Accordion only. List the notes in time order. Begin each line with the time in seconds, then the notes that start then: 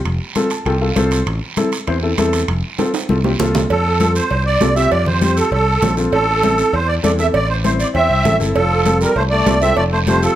3.70 A4
4.16 C5
4.46 D5
4.76 E5
4.91 D5
5.07 C5
5.22 C5
5.36 A4
5.53 A4
6.13 A4
6.74 C5
6.88 D5
7.04 D5
7.20 E5
7.34 D5
7.49 C5
7.64 C5
7.80 D5
7.95 E5
8.55 A4
9.00 A#4
9.16 C5
9.30 D5
9.62 E5
9.76 D5
9.92 C5
10.08 C5
10.23 A4